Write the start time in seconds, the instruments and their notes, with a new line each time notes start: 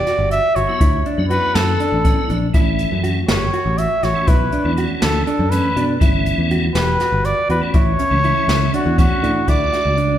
Already playing: trumpet D5
0.07 clean electric guitar F#4, snare, closed hi-hat
0.19 picked electric bass G1
0.31 trumpet E5, closed hi-hat
0.56 picked electric bass G1, clean electric guitar F#4, trumpet C#5, closed hi-hat
0.68 tonewheel organ F#3 B3 E4
0.81 picked electric bass D2, clean electric guitar E4, kick, closed hi-hat
1.06 clean electric guitar D4, closed hi-hat
1.18 picked electric bass F#2, tonewheel organ F#3 B3 E4
1.29 tonewheel organ F#3 B3 E4, clean electric guitar F#4, trumpet B4, closed hi-hat
1.55 picked electric bass F#2, trumpet A4, snare, closed hi-hat
1.80 clean electric guitar D4, closed hi-hat
1.92 picked electric bass A1
2.04 tonewheel organ F#3 B3 E4, clean electric guitar C#4, kick, closed hi-hat
2.29 picked electric bass A#1, clean electric guitar D4, closed hi-hat
2.54 picked electric bass A1, tonewheel organ E3 A3 C#4, clean electric guitar E4, kick, closed hi-hat
2.79 closed hi-hat
2.92 picked electric bass F#2
3.04 clean electric guitar F#4, closed hi-hat
3.28 picked electric bass G1, clean electric guitar G4, trumpet C#5, snare, closed hi-hat
3.53 clean electric guitar F#4, closed hi-hat
3.66 picked electric bass A1
3.78 trumpet E5, closed hi-hat
4.03 picked electric bass A1, clean electric guitar F#4, trumpet C#5, snare, closed hi-hat
4.14 tonewheel organ E3 A3 C#4
4.27 picked electric bass B1, clean electric guitar E4, trumpet B4, kick, closed hi-hat
4.52 clean electric guitar D4, closed hi-hat
4.64 picked electric bass E2, tonewheel organ E3 A3 C#4
4.77 tonewheel organ E3 A3 C#4, clean electric guitar F#4, closed hi-hat
5.02 picked electric bass D2, trumpet A4, snare, closed hi-hat
5.26 clean electric guitar D4, trumpet A4, closed hi-hat
5.39 picked electric bass F#2
5.50 tonewheel organ E3 A3 C#4, clean electric guitar C#4, trumpet B4, closed hi-hat
5.76 picked electric bass B2, clean electric guitar D4, closed hi-hat
6.00 picked electric bass G1, tonewheel organ E3 A3 C#4, clean electric guitar E4, kick, closed hi-hat
6.26 closed hi-hat
6.38 picked electric bass E2
6.51 clean electric guitar F#4, closed hi-hat
6.75 picked electric bass E1, clean electric guitar G4, trumpet B4, snare, closed hi-hat
7.00 clean electric guitar F#4, snare, closed hi-hat
7.12 picked electric bass G1
7.25 trumpet D5, closed hi-hat
7.50 picked electric bass E2, clean electric guitar F#4, trumpet B4, closed hi-hat
7.61 tonewheel organ E3 A3 C#4
7.74 picked electric bass A1, clean electric guitar E4, trumpet C#5, kick, closed hi-hat
7.99 clean electric guitar C#4, closed hi-hat
8.10 picked electric bass C#2, tonewheel organ E3 A3 C#4
8.23 tonewheel organ E3 A3 C#4, clean electric guitar E4, closed hi-hat
8.48 picked electric bass C#2, snare, closed hi-hat
8.74 clean electric guitar D4, trumpet F#4, closed hi-hat
8.86 picked electric bass E2
8.98 tonewheel organ E3 A3 C#4, clean electric guitar C#4, trumpet F#4, kick, closed hi-hat
9.23 picked electric bass A2, clean electric guitar D4, closed hi-hat
9.47 picked electric bass D2, tonewheel organ A3 D4 F#4, clean electric guitar E4, trumpet D5, kick, closed hi-hat
9.73 clean electric guitar F#4, snare, closed hi-hat
9.85 picked electric bass C#2
9.98 clean electric guitar D4, closed hi-hat